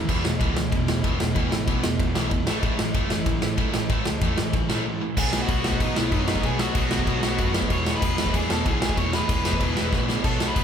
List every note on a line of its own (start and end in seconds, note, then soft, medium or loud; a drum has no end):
0.00 0.11 E3 medium
0.08 0.22 E1 medium
0.08 0.23 E2 medium
0.08 0.23 B2 medium
0.08 0.24 E3 loud
0.08 kick loud
0.08 crash medium
0.24 0.37 E1 medium
0.24 0.39 E2 medium
0.24 0.39 B2 medium
0.24 snare loud
0.40 0.66 C#2 medium
0.40 0.55 E2 medium
0.40 0.55 B2 loud
0.40 0.56 E3 loud
0.40 kick loud
0.40 ride medium
0.56 0.71 E2 medium
0.56 0.71 B2 medium
0.56 snare loud
0.72 0.85 E1 medium
0.72 0.87 E2 medium
0.72 0.87 B2 medium
0.72 kick loud
0.72 ride medium
0.76 1.39 E3 medium
0.88 1.01 E1 medium
0.88 1.02 E2 medium
0.88 1.03 B2 medium
0.88 snare loud
1.03 1.17 E1 medium
1.03 1.18 E2 medium
1.03 1.19 B2 loud
1.03 1.19 E3 loud
1.03 kick loud
1.03 ride medium
1.19 1.33 E1 loud
1.19 1.33 E2 medium
1.19 1.34 B2 medium
1.19 snare loud
1.34 1.49 E1 medium
1.34 1.49 E2 medium
1.34 1.50 B2 medium
1.34 1.51 E3 medium
1.34 kick loud
1.34 ride medium
1.51 1.65 G#1 medium
1.51 1.66 E2 medium
1.51 1.66 B2 medium
1.51 snare loud
1.67 1.80 B1 loud
1.67 1.82 E2 medium
1.67 1.82 B2 loud
1.67 1.83 E3 medium
1.67 kick loud
1.67 ride medium
1.83 1.96 E1 medium
1.83 1.98 E2 medium
1.83 1.98 B2 medium
1.83 snare loud
1.99 2.12 E1 medium
1.99 2.14 E2 medium
1.99 2.14 B2 medium
1.99 2.48 E3 loud
1.99 kick loud
1.99 ride medium
2.15 2.29 B1 medium
2.15 2.30 E2 medium
2.15 2.31 B2 medium
2.15 2.31 E3 loud
2.15 snare loud
2.31 2.44 E1 medium
2.31 2.46 E2 medium
2.31 2.46 B2 loud
2.31 kick loud
2.31 ride medium
2.47 2.60 A1 medium
2.47 2.61 A2 medium
2.47 2.62 E3 loud
2.47 2.63 A3 loud
2.47 snare loud
2.63 2.76 A1 loud
2.63 2.78 A2 medium
2.63 2.78 E3 medium
2.63 2.78 A3 loud
2.63 kick loud
2.63 ride medium
2.79 2.92 A1 medium
2.79 2.93 A2 medium
2.79 2.94 E3 medium
2.79 snare loud
2.94 3.20 F#1 medium
2.94 3.09 A2 loud
2.94 3.10 E3 loud
2.94 3.10 A3 loud
2.94 kick loud
2.94 ride medium
3.10 3.25 A2 medium
3.10 3.25 E3 medium
3.10 3.73 A3 medium
3.10 snare loud
3.26 3.39 A1 medium
3.26 3.41 A2 medium
3.26 3.41 E3 medium
3.26 kick loud
3.26 ride medium
3.42 3.55 A1 medium
3.42 3.56 A2 medium
3.42 3.56 E3 medium
3.42 snare loud
3.57 3.71 A1 medium
3.57 3.73 A2 loud
3.57 3.73 E3 loud
3.57 3.73 A3 loud
3.57 kick loud
3.57 ride medium
3.74 3.87 A1 medium
3.74 3.88 A2 medium
3.74 3.89 E3 medium
3.74 4.36 A3 loud
3.74 snare loud
3.89 4.02 A1 loud
3.89 4.05 A2 medium
3.89 4.05 E3 loud
3.89 4.06 A3 loud
3.89 kick loud
3.89 ride medium
4.05 4.19 C#2 loud
4.05 4.20 A2 medium
4.05 4.21 E3 medium
4.05 snare loud
4.21 4.34 E2 loud
4.21 4.37 A2 medium
4.21 4.37 E3 loud
4.21 4.37 A3 loud
4.21 kick loud
4.21 ride medium
4.37 4.50 A1 medium
4.37 4.52 A2 medium
4.37 4.52 E3 medium
4.37 5.00 A3 loud
4.37 snare loud
4.53 4.66 A1 medium
4.53 4.68 A2 medium
4.53 4.68 E3 medium
4.53 kick loud
4.53 ride medium
4.69 4.82 A#1 medium
4.69 4.84 A2 medium
4.69 4.84 E3 medium
4.69 4.85 A3 loud
4.69 snare loud
4.85 5.00 A2 medium
4.85 5.00 E3 medium
5.01 5.15 A2 medium
5.01 5.16 E3 medium
5.17 5.40 B1 loud
5.17 5.33 B2 medium
5.17 5.33 F#3 loud
5.17 5.32 B3 loud
5.17 5.40 G#4 medium
5.17 5.42 G#5 loud
5.17 kick loud
5.17 crash loud
5.17 crash medium
5.33 5.49 B2 medium
5.33 5.49 F#3 medium
5.33 5.49 B3 loud
5.33 snare loud
5.42 5.78 F#4 medium
5.42 5.82 F#5 medium
5.48 5.60 B1 loud
5.48 5.65 B2 medium
5.48 5.65 F#3 medium
5.48 5.64 B3 loud
5.48 kick loud
5.48 crash medium
5.64 5.76 B1 medium
5.64 5.79 B2 medium
5.64 5.79 F#3 medium
5.64 5.80 B3 loud
5.64 snare loud
5.72 kick medium
5.80 5.92 B1 loud
5.80 5.96 B2 medium
5.80 5.96 F#3 medium
5.80 5.96 B3 loud
5.80 5.96 D#4 medium
5.80 5.98 D#5 loud
5.80 kick loud
5.80 crash medium
5.96 6.09 B1 medium
5.96 6.11 B2 medium
5.96 6.11 F#3 medium
5.96 6.12 B3 medium
5.96 6.12 E4 medium
5.96 6.14 E5 loud
5.96 snare loud
6.12 6.35 F#2 medium
6.12 6.28 B2 medium
6.12 6.27 F#3 medium
6.12 6.27 B3 medium
6.12 6.24 D#4 medium
6.12 6.24 D#5 loud
6.12 kick loud
6.12 crash medium
6.24 6.43 F#3 medium
6.24 6.44 B3 loud
6.24 6.28 C#5 medium
6.24 snare loud
6.29 6.42 B2 medium
6.29 6.44 D#4 medium
6.29 6.45 D#5 medium
6.36 kick medium
6.43 6.67 B1 loud
6.43 6.59 B2 loud
6.43 6.59 F#3 loud
6.43 6.59 B3 loud
6.43 6.59 G#4 medium
6.43 6.60 G#5 medium
6.43 kick medium
6.43 crash medium
6.59 6.75 B2 medium
6.59 6.75 F#3 medium
6.59 6.76 B3 medium
6.59 7.51 F#4 medium
6.59 7.51 F#5 loud
6.59 snare loud
6.75 6.87 B1 medium
6.75 6.91 B2 medium
6.75 6.90 F#3 loud
6.75 6.91 B3 medium
6.75 kick loud
6.75 crash medium
6.91 7.03 B1 medium
6.91 7.06 B2 medium
6.91 7.06 F#3 medium
6.91 7.08 B3 loud
6.91 snare loud
6.99 kick medium
7.07 7.19 B1 loud
7.07 7.23 B2 medium
7.07 7.23 F#3 medium
7.07 7.23 B3 loud
7.07 kick loud
7.07 crash medium
7.23 7.35 B1 medium
7.23 7.37 B2 medium
7.23 7.38 F#3 medium
7.23 7.39 B3 medium
7.23 snare loud
7.38 7.61 F#2 medium
7.38 7.54 B2 medium
7.38 7.54 F#3 medium
7.38 7.54 B3 loud
7.38 kick loud
7.38 crash medium
7.54 7.69 B2 medium
7.54 7.70 F#3 loud
7.54 10.25 B3 loud
7.54 snare loud
7.62 kick medium
7.70 7.94 E1 loud
7.70 7.87 E2 loud
7.70 7.86 B2 loud
7.70 7.86 E3 loud
7.70 7.93 C#5 medium
7.70 7.95 C#6 loud
7.70 kick loud
7.70 crash medium
7.86 8.02 E2 medium
7.86 8.02 B2 medium
7.86 8.03 E3 loud
7.86 snare loud
7.96 8.32 B4 medium
7.96 8.36 B5 loud
8.02 8.14 E1 loud
8.02 8.18 E2 medium
8.02 8.17 B2 medium
8.02 8.18 E3 loud
8.02 kick loud
8.02 crash medium
8.18 8.31 E1 loud
8.18 8.32 E2 medium
8.18 8.33 B2 loud
8.18 8.33 E3 loud
8.18 snare loud
8.26 kick medium
8.33 8.46 E1 loud
8.33 8.50 E2 medium
8.33 8.50 B2 loud
8.33 8.49 E3 medium
8.33 8.49 G#4 medium
8.33 8.49 G#5 medium
8.33 kick loud
8.33 crash medium
8.50 8.62 E1 medium
8.50 8.65 E2 medium
8.50 8.65 B2 medium
8.50 8.65 E3 medium
8.50 8.65 A4 medium
8.50 8.67 A5 loud
8.50 snare loud
8.66 8.89 B1 medium
8.66 8.81 E2 loud
8.66 8.81 B2 loud
8.66 8.81 E3 loud
8.66 8.81 G#4 medium
8.66 8.80 G#5 medium
8.66 kick loud
8.66 crash medium
8.81 8.96 E2 medium
8.81 8.97 B2 medium
8.81 8.97 E3 medium
8.81 8.97 G#4 medium
8.81 8.98 G#5 medium
8.81 snare loud
8.89 kick medium
8.97 9.20 E1 loud
8.97 9.13 E2 loud
8.97 9.13 B2 loud
8.97 9.12 E3 loud
8.97 9.13 C#5 medium
8.97 9.13 C#6 loud
8.97 kick loud
8.97 crash medium
9.13 9.27 E2 medium
9.13 9.28 B2 medium
9.13 9.28 E3 loud
9.13 10.05 B4 medium
9.13 10.05 B5 medium
9.13 snare loud
9.28 9.41 E1 loud
9.28 9.44 E2 medium
9.28 9.44 B2 loud
9.28 9.43 E3 loud
9.28 kick loud
9.28 crash medium
9.44 9.57 E1 medium
9.44 9.59 E2 medium
9.44 9.60 B2 medium
9.44 9.60 E3 loud
9.44 snare loud
9.53 kick medium
9.60 9.72 E1 loud
9.60 9.75 E2 loud
9.60 9.75 B2 medium
9.60 9.75 E3 loud
9.60 kick loud
9.60 crash medium
9.76 9.89 E1 medium
9.76 9.91 E2 medium
9.76 9.91 B2 medium
9.76 9.92 E3 loud
9.76 snare loud
9.92 10.16 A#1 loud
9.92 10.08 E2 loud
9.92 10.08 B2 medium
9.92 10.07 E3 loud
9.92 kick loud
9.92 snare medium
10.08 10.24 E2 medium
10.08 10.23 B2 medium
10.08 10.24 E3 loud
10.08 snare medium
10.24 10.48 B1 medium
10.24 10.40 B2 medium
10.24 10.40 F#3 loud
10.24 10.39 B3 loud
10.24 10.47 A4 medium
10.24 10.49 A5 loud
10.24 kick loud
10.24 splash medium
10.24 crash medium
10.40 10.55 B2 medium
10.40 10.56 F#3 medium
10.40 10.56 B3 loud
10.40 snare loud
10.47 10.64 B4 medium
10.47 10.64 B5 loud
10.55 10.64 B1 loud
10.55 10.64 B2 medium
10.55 10.64 F#3 medium
10.55 10.64 B3 loud
10.55 kick loud
10.55 crash medium